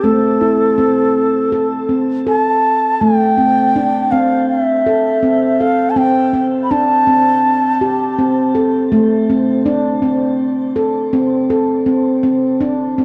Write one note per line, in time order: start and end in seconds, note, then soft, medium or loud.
0.04 2.97 A3 medium
0.04 0.41 C4 medium
0.04 1.99 A4 medium
0.41 0.78 E4 medium
0.78 1.52 C4 medium
1.52 1.90 A4 medium
1.89 2.27 C4 medium
2.27 3.01 A4 medium
2.27 3.03 A5 medium
3.01 5.93 A3 medium
3.01 4.13 G5 loud
3.38 3.75 C4 medium
3.76 4.12 D4 medium
4.11 4.86 C4 medium
4.11 4.49 F5 medium
4.50 5.61 E5 medium
4.86 5.23 A4 medium
5.23 5.60 C4 medium
5.60 5.97 A4 medium
5.60 5.92 F5 medium
5.90 5.99 A5 medium
5.96 6.32 C4 medium
5.96 6.44 G5 medium
6.33 6.70 C4 medium
6.64 6.73 B5 medium
6.71 7.08 D4 medium
6.71 8.55 A5 medium
7.07 7.81 C4 medium
7.81 8.18 G4 medium
8.18 8.55 C4 medium
8.55 8.92 A4 medium
8.92 11.83 A3 medium
9.30 9.66 C4 medium
9.66 10.02 D4 medium
10.02 10.76 C4 medium
10.76 11.13 A4 medium
11.13 11.50 C4 medium
11.50 11.87 A4 medium
11.86 12.22 C4 medium
12.23 12.60 C4 medium
12.61 12.97 D4 medium
12.98 13.05 C4 medium